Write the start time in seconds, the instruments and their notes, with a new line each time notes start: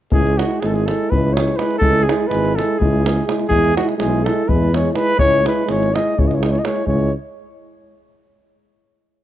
0.11 tuba C#2, euphonium G#3, french horn E4, flugelhorn G#4, davul low
0.27 davul high
0.38 euphonium G#3, french horn E4, flugelhorn F#4, davul high
0.51 davul high
0.60 tuba G#1, euphonium G#3, french horn E4, flugelhorn G#4, davul high
0.66 flugelhorn A4
0.74 flugelhorn G#4, davul high
0.86 euphonium G#3, french horn E4, flugelhorn A4, davul high
1.10 tuba C#2, euphonium G#3, french horn E4, flugelhorn B4, davul low
1.33 euphonium G#3, flugelhorn C#5, davul high
1.39 french horn E4
1.48 davul high
1.56 euphonium G#3, flugelhorn B4, davul high
1.61 french horn E4
1.71 davul high
1.78 euphonium G#3, french horn E4, flugelhorn A4, davul low
1.83 tuba C#2
1.96 davul high
2.03 flugelhorn G#4
2.07 euphonium G#3, french horn E4, davul high
2.27 euphonium G#3, flugelhorn B4
2.31 tuba G#1, french horn E4, davul high
2.45 davul high
2.56 euphonium G#3, french horn E4, flugelhorn A4, davul high
2.79 tuba C#2, euphonium G#3, french horn E4, flugelhorn G#4, davul low
3.05 euphonium G#3, french horn E4, davul high
3.16 davul high
3.26 euphonium G#3, french horn E4, davul high
3.39 davul high
3.48 tuba E2, euphonium G#3, french horn E4, flugelhorn G#4, davul low
3.65 davul high
3.76 euphonium G#3, french horn E4, flugelhorn F#4, davul high
3.89 davul high
3.98 tuba B1, euphonium G#3, french horn E4, flugelhorn G#4, davul high
4.24 euphonium G#3, french horn E4, flugelhorn A4, davul high
4.46 euphonium G#3, french horn E4, flugelhorn B4, davul low
4.51 tuba E2
4.73 euphonium G#3, french horn E4, flugelhorn C#5, davul high
4.85 davul high
4.92 euphonium G#3, flugelhorn B4 C#5, davul high
4.96 french horn E4
5.07 davul high
5.17 tuba C#2, euphonium G#3, french horn E4, flugelhorn C#5, davul low
5.33 davul high
5.43 euphonium G#3, french horn E4, davul high
5.47 flugelhorn B4
5.65 tuba G#1, euphonium G#3, french horn E4, davul high
5.70 flugelhorn C#5
5.83 davul high
5.93 euphonium G#3, french horn E4, flugelhorn D#5, davul high
6.16 tuba C#2, euphonium G#3, french horn E4, flugelhorn C#5, davul low
6.28 flugelhorn D#5, davul high
6.35 flugelhorn C#5
6.41 euphonium G#3, french horn E4, flugelhorn D#5, davul high
6.50 flugelhorn C#5
6.55 flugelhorn D#5, davul high
6.64 euphonium G#3, french horn E4, flugelhorn C#5, davul high
6.76 davul high
6.85 tuba C#2, euphonium G#3, french horn E4, flugelhorn C#5, davul low